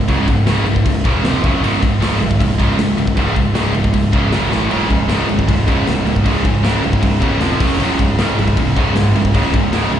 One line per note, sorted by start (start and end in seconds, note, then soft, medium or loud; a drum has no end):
0.08 0.25 C#1 medium
0.08 0.25 C#2 loud
0.08 0.26 G#2 medium
0.08 0.27 C#3 loud
0.08 kick loud
0.08 crash medium
0.27 0.44 C#1 loud
0.27 0.44 C#2 medium
0.27 0.45 G#2 medium
0.27 kick medium
0.27 crash medium
0.47 0.63 C#1 loud
0.47 0.65 C#2 medium
0.47 0.65 G#2 loud
0.47 0.65 C#3 loud
0.47 snare loud
0.47 crash medium
0.66 0.83 C#1 medium
0.66 0.83 C#2 medium
0.66 0.84 G#2 medium
0.66 crash medium
0.76 kick medium
0.85 1.02 C#1 loud
0.85 1.03 C#2 medium
0.85 1.03 G#2 medium
0.85 kick loud
0.85 crash medium
1.04 1.21 E1 loud
1.04 1.23 C#2 medium
1.04 1.23 G#2 loud
1.04 1.23 C#3 loud
1.04 kick medium
1.04 crash medium
1.24 1.41 F1 medium
1.24 1.42 F2 loud
1.24 1.43 C3 medium
1.24 1.43 F3 loud
1.24 snare loud
1.24 crash medium
1.44 1.60 F#1 loud
1.44 1.61 F#2 loud
1.44 1.62 C#3 loud
1.44 1.62 F#3 loud
1.44 kick loud
1.44 crash medium
1.62 1.79 C#1 medium
1.62 1.81 C#2 medium
1.62 1.81 G#2 loud
1.62 1.81 C#3 loud
1.62 crash medium
1.82 1.99 C#1 loud
1.82 1.99 C#2 medium
1.82 2.00 G#2 medium
1.82 kick medium
1.82 crash medium
2.00 2.18 C#1 loud
2.00 2.19 C#2 medium
2.00 2.19 G#2 loud
2.00 2.19 C#3 loud
2.00 snare loud
2.00 crash medium
2.20 2.37 G#1 medium
2.20 2.37 C#2 medium
2.20 2.37 G#2 medium
2.20 crash medium
2.31 kick medium
2.40 2.56 F1 medium
2.40 2.57 C#2 medium
2.40 2.57 G#2 medium
2.40 kick loud
2.40 crash medium
2.58 2.76 C#1 loud
2.58 2.77 C#2 loud
2.58 2.77 G#2 loud
2.58 2.77 C#3 loud
2.58 kick medium
2.58 crash medium
2.78 2.95 C#1 medium
2.78 2.96 C#2 medium
2.78 2.96 G#2 medium
2.78 snare loud
2.78 crash medium
2.97 3.14 C#1 medium
2.97 3.15 C#2 medium
2.97 3.15 G#2 medium
2.97 crash medium
3.07 kick medium
3.17 3.33 C#1 loud
3.17 3.35 C#2 loud
3.17 3.35 G#2 loud
3.17 3.35 C#3 loud
3.17 kick loud
3.17 crash medium
3.36 3.53 C#1 medium
3.36 3.53 C#2 medium
3.36 3.53 G#2 medium
3.36 kick medium
3.36 crash medium
3.55 3.72 C#1 medium
3.55 3.73 C#2 loud
3.55 3.73 G#2 loud
3.55 3.74 C#3 loud
3.55 snare loud
3.55 crash medium
3.75 3.91 C#1 medium
3.75 3.92 C#2 medium
3.75 3.92 G#2 medium
3.75 crash medium
3.84 kick medium
3.94 4.10 C#1 medium
3.94 4.11 C#2 medium
3.94 4.11 G#2 medium
3.94 kick medium
3.94 crash medium
4.12 4.30 C#1 loud
4.12 4.31 C#2 medium
4.12 4.31 G#2 loud
4.12 4.31 C#3 loud
4.12 kick medium
4.12 crash medium
4.31 4.49 F#1 medium
4.31 4.50 F#2 medium
4.31 4.50 C#3 medium
4.31 4.50 F#3 medium
4.31 snare loud
4.31 crash medium
4.50 4.68 A1 medium
4.50 4.69 A2 medium
4.50 4.69 E3 medium
4.50 4.70 A3 loud
4.50 snare medium
4.70 4.87 C#1 medium
4.70 4.88 C#2 medium
4.70 4.89 G#2 medium
4.70 4.89 C#3 loud
4.70 crash medium
4.90 5.07 C#1 medium
4.90 5.07 C#2 medium
4.90 5.08 G#2 medium
4.90 5.09 C#3 medium
4.90 kick medium
4.90 crash medium
5.08 5.26 C#1 medium
5.08 5.27 C#2 medium
5.08 5.27 G#2 loud
5.08 5.28 C#3 loud
5.08 snare loud
5.08 crash medium
5.28 5.45 G#1 medium
5.28 5.46 C#2 medium
5.28 5.46 G#2 medium
5.28 5.47 C#3 medium
5.28 crash medium
5.39 kick medium
5.48 5.64 F1 medium
5.48 5.65 C#2 medium
5.48 5.65 G#2 medium
5.48 5.66 C#3 medium
5.48 kick loud
5.48 crash medium
5.67 5.84 C#1 medium
5.67 5.85 C#2 loud
5.67 5.85 G#2 loud
5.67 5.86 C#3 loud
5.67 kick loud
5.67 crash medium
5.86 6.03 C#1 medium
5.86 6.04 C#2 medium
5.86 6.04 G#2 medium
5.86 6.06 C#3 loud
5.86 snare loud
5.86 crash medium
6.05 6.22 C#1 medium
6.05 6.23 C#2 medium
6.05 6.23 G#2 medium
6.05 6.24 C#3 loud
6.05 crash medium
6.16 kick medium
6.24 6.42 C#1 medium
6.24 6.42 C#2 medium
6.24 6.43 G#2 loud
6.24 6.43 C#3 loud
6.24 kick loud
6.24 crash medium
6.44 6.61 C#1 medium
6.44 6.61 C#2 medium
6.44 6.61 G#2 medium
6.44 6.63 C#3 loud
6.44 kick loud
6.44 crash medium
6.63 6.80 C#1 medium
6.63 6.81 C#2 medium
6.63 6.81 G#2 loud
6.63 6.82 C#3 loud
6.63 snare loud
6.63 crash medium
6.82 7.00 C#1 medium
6.82 7.00 C#2 medium
6.82 7.00 G#2 medium
6.82 7.02 C#3 loud
6.82 crash medium
6.93 kick medium
7.01 7.19 C#1 medium
7.01 7.19 C#2 medium
7.01 7.19 G#2 medium
7.01 7.22 C#3 loud
7.01 kick loud
7.01 crash medium
7.20 7.38 D1 loud
7.20 7.39 C#2 medium
7.20 7.39 G#2 loud
7.20 7.40 C#3 loud
7.20 kick medium
7.20 crash medium
7.40 7.57 F1 medium
7.40 7.58 F2 loud
7.40 7.59 C3 loud
7.40 7.59 F3 loud
7.40 snare loud
7.40 crash medium
7.59 7.77 F#1 medium
7.59 7.78 F#2 loud
7.59 7.78 C#3 medium
7.59 7.78 F#3 loud
7.59 kick loud
7.59 crash loud
7.80 7.96 C#1 loud
7.80 7.97 C#2 medium
7.80 7.98 G#2 loud
7.80 7.98 C#3 loud
7.80 crash medium
7.99 8.15 C#1 loud
7.99 8.16 C#2 medium
7.99 8.16 G#2 medium
7.99 8.19 C#3 loud
7.99 kick medium
7.99 crash medium
8.18 8.35 C#1 medium
8.18 8.36 C#2 medium
8.18 8.37 G#2 medium
8.18 8.37 C#3 loud
8.18 snare loud
8.18 crash medium
8.38 8.54 G#1 medium
8.38 8.55 C#2 medium
8.38 8.55 G#2 medium
8.38 8.58 C#3 medium
8.38 crash medium
8.48 kick medium
8.56 8.73 F1 medium
8.56 8.74 C#2 medium
8.56 8.74 G#2 medium
8.56 8.78 C#3 loud
8.56 kick loud
8.56 crash medium
8.75 8.93 C#1 loud
8.75 8.94 C#2 loud
8.75 8.94 G#2 loud
8.75 8.94 C#3 loud
8.75 kick medium
8.75 crash medium
8.95 9.11 C#1 loud
8.95 9.13 C#2 medium
8.95 9.13 G#2 medium
8.95 9.15 C#3 medium
8.95 snare loud
8.95 crash medium
9.15 9.31 C#1 medium
9.15 9.32 C#2 medium
9.15 9.32 G#2 medium
9.15 9.34 C#3 medium
9.15 crash medium
9.25 kick medium
9.34 9.51 C#1 medium
9.34 9.52 C#2 medium
9.34 9.52 G#2 loud
9.34 9.52 C#3 loud
9.34 kick loud
9.34 crash medium
9.54 9.70 C#1 loud
9.54 9.71 C#2 medium
9.54 9.71 G#2 medium
9.54 9.72 C#3 medium
9.54 kick loud
9.54 crash medium
9.72 9.89 C#1 medium
9.72 9.90 C#2 medium
9.72 9.91 G#2 loud
9.72 9.91 C#3 medium
9.72 snare loud
9.72 crash medium
9.92 10.00 C#1 medium
9.92 10.00 C#2 medium
9.92 10.00 G#2 medium
9.92 10.00 C#3 medium
9.92 crash medium